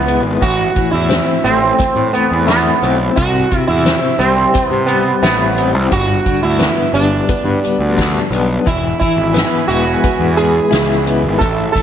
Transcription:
0.00 0.24 C#2 medium
0.00 0.75 E3 medium
0.00 0.41 G#3 medium
0.00 0.20 B3 medium
0.00 2.47 E4 medium
0.06 0.41 B3 medium
0.06 closed hi-hat medium
0.24 0.37 G#1 medium
0.41 0.67 A1 medium
0.41 2.13 A2 medium
0.41 0.90 F#4 medium
0.41 kick medium
0.41 closed hi-hat medium
0.75 2.48 E3 medium
0.75 kick medium
0.75 closed hi-hat medium
0.91 1.19 E2 medium
0.91 1.45 E4 medium
1.09 1.77 C4 medium
1.09 snare loud
1.09 closed hi-hat medium
1.44 1.70 A1 medium
1.44 2.13 A3 medium
1.44 2.13 C4 medium
1.44 closed hi-hat medium
1.79 2.81 C4 medium
1.79 kick loud
1.79 closed hi-hat medium
1.96 2.09 A2 medium
2.13 3.17 A3 medium
2.13 2.45 B3 medium
2.13 closed hi-hat soft
2.31 2.70 E2 medium
2.47 2.96 B3 medium
2.47 3.16 E4 medium
2.47 snare medium
2.47 closed hi-hat medium
2.83 3.08 B1 medium
2.83 3.17 C4 medium
2.83 closed hi-hat soft
3.16 3.43 C2 medium
3.16 3.49 C3 medium
3.16 3.67 F#4 medium
3.16 kick loud
3.16 closed hi-hat medium
3.51 5.23 C3 medium
3.51 kick medium
3.51 closed hi-hat medium
3.67 3.94 E2 medium
3.67 4.16 E4 medium
3.86 4.53 C4 medium
3.86 snare loud
3.86 closed hi-hat medium
4.19 4.45 C2 medium
4.19 4.87 G3 medium
4.19 4.65 C4 medium
4.19 closed hi-hat medium
4.54 5.55 C4 medium
4.54 kick medium
4.54 closed hi-hat medium
4.65 4.84 B3 medium
4.71 5.10 C3 medium
4.86 5.91 G3 medium
4.86 5.21 B3 medium
4.86 closed hi-hat medium
5.22 5.74 A1 medium
5.22 5.70 B3 medium
5.22 5.91 E4 medium
5.22 snare medium
5.22 closed hi-hat medium
5.57 5.91 C4 medium
5.57 closed hi-hat medium
5.74 5.87 C2 medium
5.91 6.18 G1 medium
5.91 7.63 G2 medium
5.91 6.42 F#4 medium
5.91 kick medium
5.91 closed hi-hat medium
6.25 7.97 D3 medium
6.25 kick medium
6.25 closed hi-hat medium
6.42 6.69 D2 medium
6.42 6.93 E4 medium
6.59 7.28 B3 medium
6.59 snare medium
6.59 closed hi-hat medium
6.93 7.20 G1 medium
6.93 7.62 G3 medium
6.93 7.93 D4 medium
6.93 closed hi-hat medium
7.29 8.31 B3 medium
7.29 kick loud
7.29 closed hi-hat medium
7.45 7.58 G2 medium
7.64 8.66 G3 medium
7.64 closed hi-hat soft
7.79 8.19 D2 medium
7.98 8.66 D4 medium
7.98 kick medium
7.98 snare medium
7.98 closed hi-hat medium
8.31 8.57 B1 medium
8.31 8.66 B3 medium
8.31 closed hi-hat medium
8.64 8.92 E1 medium
8.64 9.00 E3 medium
8.64 8.98 E4 medium
8.64 11.82 E5 medium
8.64 11.37 G#5 medium
8.64 11.38 B5 medium
8.64 kick loud
8.64 closed hi-hat medium
8.99 11.74 E3 medium
8.99 9.67 E4 medium
8.99 kick medium
8.99 closed hi-hat soft
9.17 9.43 G#1 medium
9.34 10.03 B3 medium
9.34 snare loud
9.34 closed hi-hat medium
9.68 9.95 E1 medium
9.68 10.37 G#3 medium
9.68 10.33 F#4 medium
9.68 closed hi-hat medium
10.04 11.05 B3 medium
10.04 kick medium
10.04 closed hi-hat medium
10.20 10.59 E2 medium
10.37 11.41 G#3 medium
10.37 11.02 G#4 medium
10.37 closed hi-hat medium
10.71 11.25 C#2 medium
10.71 11.82 E4 medium
10.71 snare medium
10.71 closed hi-hat medium
10.91 snare soft
11.06 11.40 B3 medium
11.06 closed hi-hat medium
11.23 11.36 G#1 medium
11.38 11.67 A1 medium
11.38 11.82 A2 medium
11.38 11.71 A4 medium
11.38 11.82 A5 medium
11.38 kick medium
11.38 closed hi-hat medium
11.72 11.82 E3 medium
11.72 11.82 A4 medium
11.72 kick medium
11.76 closed hi-hat medium

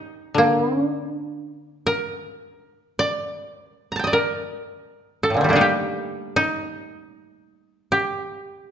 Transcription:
0.00 0.44 D#4 medium
0.00 1.27 G4 medium
0.34 2.60 D3 soft
0.34 0.85 A#3 medium
0.85 2.81 D4 medium
1.87 3.70 A#4 medium
2.99 3.71 D5 medium
3.71 4.07 A#4 medium
3.92 5.13 A#5 soft
3.96 5.34 G5 soft
3.96 4.19 A5 soft
4.04 5.47 D5 soft
4.04 5.43 D#5 soft
4.13 5.29 A#4 medium
5.23 7.14 A4 medium
5.30 5.47 A2 soft
5.30 5.55 A#2 soft
5.37 5.62 D3 soft
5.41 5.55 D#3 soft
5.41 8.53 G3 soft
5.49 8.37 A3 soft
5.49 8.29 A#3 soft
5.53 7.88 G3 soft
5.53 6.42 D4 soft
5.53 6.36 D#4 soft
5.61 7.65 G4 medium
6.36 8.71 D#4 medium
7.92 8.71 G4 medium

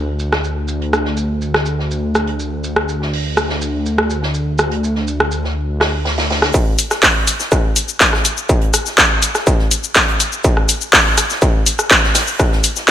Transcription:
0.00 6.52 D2 medium
0.19 shaker medium
0.32 cross-stick soft
0.32 snare soft
0.44 shaker medium
0.68 shaker medium
0.82 closed hi-hat soft
0.93 cross-stick medium
0.93 shaker medium
1.05 snare soft
1.17 shaker medium
1.42 shaker medium
1.54 cross-stick soft
1.54 snare soft
1.66 shaker medium
1.79 snare soft
1.91 shaker medium
2.15 cross-stick soft
2.15 shaker medium
2.27 closed hi-hat soft
2.40 shaker medium
2.64 shaker medium
2.76 cross-stick medium
2.89 shaker medium
3.02 snare soft
3.13 open hi-hat medium
3.37 cross-stick medium
3.37 shaker medium
3.49 snare soft
3.61 shaker medium
3.86 shaker medium
3.98 cross-stick medium
4.10 shaker medium
4.22 snare medium
4.34 shaker medium
4.58 cross-stick medium
4.58 shaker medium
4.71 closed hi-hat soft
4.84 shaker medium
4.95 snare soft
5.08 shaker medium
5.20 cross-stick medium
5.31 shaker medium
5.44 snare soft
5.80 cross-stick soft
5.80 snare medium
5.80 open hi-hat medium
6.05 snare medium
6.05 open hi-hat medium
6.17 snare loud
6.17 open hi-hat medium
6.30 snare medium
6.30 open hi-hat medium
6.42 cross-stick soft
6.42 snare medium
6.42 open hi-hat medium
6.54 kick loud
6.54 shaker soft
6.54 shaker medium
6.79 open hi-hat loud
6.79 shaker medium
6.90 cross-stick soft
6.90 snare soft
6.90 shaker soft
7.02 kick loud
7.02 snare loud
7.02 clap loud
7.02 open hi-hat medium
7.02 shaker soft
7.27 open hi-hat loud
7.27 shaker medium
7.40 snare medium
7.40 shaker soft
7.51 kick loud
7.51 cross-stick soft
7.51 shaker medium
7.51 shaker soft
7.76 open hi-hat loud
7.76 shaker medium
7.89 shaker soft
8.00 kick loud
8.00 snare loud
8.00 clap loud
8.00 shaker medium
8.00 shaker soft
8.13 cross-stick soft
8.13 snare medium
8.25 open hi-hat loud
8.25 shaker medium
8.37 shaker soft
8.49 kick loud
8.49 shaker medium
8.49 shaker soft
8.61 closed hi-hat soft
8.74 cross-stick soft
8.74 open hi-hat loud
8.74 shaker medium
8.86 snare soft
8.86 shaker soft
8.98 kick loud
8.98 snare loud
8.98 clap loud
8.98 shaker medium
8.98 shaker soft
9.22 open hi-hat loud
9.22 shaker medium
9.34 cross-stick soft
9.34 snare soft
9.34 shaker soft
9.47 kick loud
9.47 shaker medium
9.47 shaker soft
9.59 snare soft
9.71 open hi-hat loud
9.71 shaker medium
9.84 shaker soft
9.95 kick loud
9.95 cross-stick soft
9.95 snare loud
9.95 clap loud
9.95 shaker medium
9.95 shaker soft
10.08 closed hi-hat soft
10.20 open hi-hat loud
10.20 shaker medium
10.33 shaker soft
10.44 kick loud
10.44 shaker medium
10.44 shaker soft
10.57 cross-stick soft
10.69 open hi-hat loud
10.69 shaker medium
10.81 shaker soft
10.93 kick loud
10.93 snare loud
10.93 clap loud
10.93 open hi-hat medium
10.93 shaker soft
11.17 cross-stick soft
11.17 open hi-hat loud
11.17 shaker medium
11.30 snare soft
11.30 shaker soft
11.42 kick loud
11.42 shaker medium
11.42 shaker soft
11.66 open hi-hat loud
11.66 shaker medium
11.79 cross-stick medium
11.79 shaker soft
11.90 kick loud
11.90 snare loud
11.90 clap loud
11.90 shaker medium
11.90 shaker soft
12.03 snare medium
12.14 snare loud
12.14 open hi-hat medium
12.14 open hi-hat loud
12.14 shaker medium
12.28 shaker soft
12.39 kick loud
12.39 cross-stick soft
12.39 shaker medium
12.39 shaker soft
12.52 snare medium
12.64 open hi-hat loud
12.64 shaker medium
12.76 snare soft
12.76 shaker soft
12.88 snare loud

